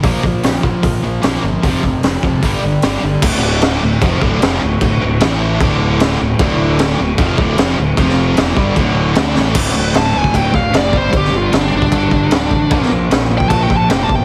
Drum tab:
CC |----------------|----------------|x---x---x---x---|x---x---x---x---|
HH |o---o---o---o---|o---o---o---o---|----------------|----------------|
SD |----o-------o---|----o-------o---|-o--o-------o---|----o-------o---|
BD |o-o---o-o-------|o-o---o-o-------|o-------o-o-----|o-------o-------|

CC |x---x---x---x---|x---x---x---x---|x---x---x---x---|x---x---x---x---|
HH |----------------|----------------|----------------|----------------|
SD |----o-------o---|-o--o-------o-o-|-o--o-------o---|-o--o-------o---|
BD |o-------o-o-----|o-----o-o-------|o------oo-o---o-|o------oo-o---o-|

CC |x---x---x---x---|
HH |----------------|
SD |-o--o-------o---|
BD |o------oo-o---o-|